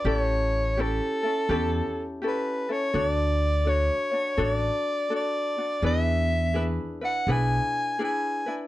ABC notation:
X:1
M:4/4
L:1/16
Q:"Swing" 1/4=83
K:D
V:1 name="Soprano saxophone"
c4 A6 z2 B2 c2 | d4 c4 d4 d4 | e4 z2 f2 ^g4 g3 z |]
V:2 name="Ukulele"
[CEGA]4 [CEGA]2 [CEA]2 [CEGA]4 [CEGA]2 [CEA]2 | [DFA]4 [DFAc]2 [DFc]2 [DFA]4 [DFA]2 [DF]2 | [DE^GB]4 [DEGB]2 [DEB]2 [DEGB]4 [DEGB]2 [DEB]2 |]
V:3 name="Upright bass" clef=bass
A,,,8 E,,2 z6 | D,,8 A,,,2 z6 | E,,8 B,,,2 z6 |]